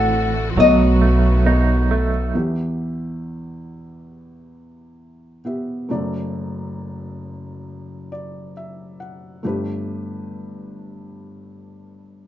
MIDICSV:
0, 0, Header, 1, 7, 480
1, 0, Start_track
1, 0, Key_signature, 1, "minor"
1, 0, Tempo, 886263
1, 1270, Time_signature, 4, 2, 24, 8
1, 6647, End_track
2, 0, Start_track
2, 0, Title_t, "Nylon-string guitar"
2, 0, Program_c, 0, 24
2, 0, Note_on_c, 0, 78, 81
2, 322, Note_off_c, 0, 78, 0
2, 324, Note_on_c, 0, 75, 70
2, 1016, Note_off_c, 0, 75, 0
2, 6647, End_track
3, 0, Start_track
3, 0, Title_t, "Clarinet"
3, 0, Program_c, 1, 71
3, 0, Note_on_c, 1, 69, 97
3, 274, Note_on_c, 1, 65, 48
3, 282, Note_off_c, 1, 69, 0
3, 313, Note_on_c, 1, 66, 83
3, 321, Note_off_c, 1, 65, 0
3, 791, Note_off_c, 1, 66, 0
3, 795, Note_on_c, 1, 66, 71
3, 1036, Note_on_c, 1, 69, 63
3, 1044, Note_off_c, 1, 66, 0
3, 1273, Note_off_c, 1, 69, 0
3, 6647, End_track
4, 0, Start_track
4, 0, Title_t, "Felt piano"
4, 0, Program_c, 2, 0
4, 0, Control_c, 2, 64, 127
4, 0, Note_on_c, 2, 33, 57
4, 0, Note_on_c, 2, 45, 56
4, 0, Note_on_c, 2, 57, 61
4, 0, Note_on_c, 2, 66, 51
4, 0, Note_on_c, 2, 74, 64
4, 0, Note_on_c, 2, 76, 85
4, 167, Note_off_c, 2, 57, 0
4, 170, Note_off_c, 2, 66, 0
4, 171, Note_off_c, 2, 74, 0
4, 289, Note_off_c, 2, 33, 0
4, 291, Note_off_c, 2, 45, 0
4, 312, Note_on_c, 2, 47, 53
4, 312, Note_on_c, 2, 59, 60
4, 314, Note_on_c, 2, 35, 52
4, 314, Note_on_c, 2, 69, 50
4, 315, Control_c, 2, 64, 0
4, 316, Note_off_c, 2, 76, 0
4, 317, Note_on_c, 2, 75, 64
4, 395, Control_c, 2, 64, 127
4, 650, Note_off_c, 2, 59, 0
4, 651, Note_off_c, 2, 69, 0
4, 652, Note_off_c, 2, 75, 0
4, 784, Note_on_c, 2, 59, 61
4, 789, Note_on_c, 2, 69, 56
4, 793, Note_on_c, 2, 75, 71
4, 1127, Note_off_c, 2, 59, 0
4, 1130, Note_off_c, 2, 69, 0
4, 1132, Note_off_c, 2, 75, 0
4, 1251, Note_off_c, 2, 47, 0
4, 1252, Note_off_c, 2, 35, 0
4, 1265, Note_on_c, 2, 59, 44
4, 1271, Note_on_c, 2, 67, 45
4, 1272, Note_on_c, 2, 40, 41
4, 1274, Note_on_c, 2, 52, 45
4, 1277, Control_c, 2, 64, 0
4, 1281, Note_on_c, 2, 76, 48
4, 1372, Control_c, 2, 64, 127
4, 2929, Note_off_c, 2, 59, 0
4, 2932, Note_off_c, 2, 67, 0
4, 2937, Note_off_c, 2, 76, 0
4, 2950, Note_on_c, 2, 59, 36
4, 2955, Note_on_c, 2, 67, 36
4, 2960, Note_on_c, 2, 76, 40
4, 3172, Note_off_c, 2, 40, 0
4, 3173, Note_off_c, 2, 52, 0
4, 3189, Note_on_c, 2, 57, 51
4, 3192, Note_off_c, 2, 59, 0
4, 3194, Note_off_c, 2, 67, 0
4, 3196, Note_off_c, 2, 76, 0
4, 3197, Note_on_c, 2, 42, 47
4, 3197, Note_on_c, 2, 66, 42
4, 3199, Note_on_c, 2, 30, 50
4, 3200, Control_c, 2, 64, 0
4, 3201, Note_on_c, 2, 74, 55
4, 3310, Control_c, 2, 64, 127
4, 4389, Note_off_c, 2, 74, 0
4, 4397, Note_on_c, 2, 74, 51
4, 4618, Note_off_c, 2, 74, 0
4, 4641, Note_on_c, 2, 76, 51
4, 4860, Note_off_c, 2, 76, 0
4, 4874, Note_on_c, 2, 78, 46
4, 5089, Note_off_c, 2, 57, 0
4, 5093, Note_off_c, 2, 42, 0
4, 5093, Note_off_c, 2, 66, 0
4, 5094, Note_off_c, 2, 30, 0
4, 5097, Note_off_c, 2, 78, 0
4, 5107, Note_on_c, 2, 57, 49
4, 5114, Note_on_c, 2, 31, 46
4, 5116, Note_on_c, 2, 67, 46
4, 5117, Note_on_c, 2, 43, 50
4, 5119, Control_c, 2, 64, 0
4, 5125, Note_on_c, 2, 71, 54
4, 5213, Control_c, 2, 64, 127
4, 6647, Note_off_c, 2, 31, 0
4, 6647, Note_off_c, 2, 43, 0
4, 6647, Note_off_c, 2, 57, 0
4, 6647, Note_off_c, 2, 67, 0
4, 6647, Note_off_c, 2, 71, 0
4, 6647, End_track
5, 0, Start_track
5, 0, Title_t, "String section"
5, 0, Program_c, 3, 48
5, 0, Note_on_c, 3, 48, 63
5, 0, Note_on_c, 3, 57, 62
5, 0, Note_on_c, 3, 64, 59
5, 0, Note_on_c, 3, 66, 71
5, 286, Note_off_c, 3, 48, 0
5, 287, Note_off_c, 3, 64, 0
5, 321, Note_on_c, 3, 51, 71
5, 321, Note_on_c, 3, 59, 64
5, 1254, Note_off_c, 3, 57, 0
5, 1255, Note_off_c, 3, 66, 0
5, 1267, Note_off_c, 3, 51, 0
5, 1268, Note_off_c, 3, 59, 0
5, 6647, End_track
6, 0, Start_track
6, 0, Title_t, "Clean electric guitar"
6, 0, Program_c, 4, 27
6, 0, Note_on_c, 4, 52, 71
6, 0, Note_on_c, 4, 60, 54
6, 309, Note_off_c, 4, 52, 0
6, 312, Note_on_c, 4, 54, 67
6, 357, Note_off_c, 4, 60, 0
6, 550, Note_on_c, 4, 57, 47
6, 793, Note_on_c, 4, 63, 53
6, 1028, Note_off_c, 4, 57, 0
6, 1034, Note_on_c, 4, 57, 44
6, 1320, Note_off_c, 4, 54, 0
6, 1321, Note_off_c, 4, 57, 0
6, 1321, Note_off_c, 4, 63, 0
6, 6647, End_track
7, 0, Start_track
7, 0, Title_t, "Upright bass"
7, 0, Program_c, 5, 32
7, 0, Note_on_c, 5, 33, 68
7, 290, Note_off_c, 5, 33, 0
7, 305, Note_on_c, 5, 35, 68
7, 1250, Note_off_c, 5, 35, 0
7, 6647, End_track
0, 0, End_of_file